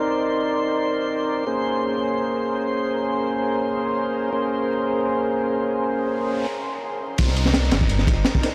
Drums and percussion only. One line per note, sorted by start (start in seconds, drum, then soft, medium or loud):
7.18 kick loud
7.18 ride medium
7.28 snare soft
7.36 ride medium
7.45 snare medium
7.54 snare loud
7.54 ride medium
7.63 snare medium
7.71 snare loud
7.71 ride medium
7.81 kick medium
7.89 ride medium
7.99 snare soft
8.07 kick loud
8.07 ride medium
8.25 snare loud
8.25 ride medium
8.35 kick medium
8.43 snare soft
8.43 ride medium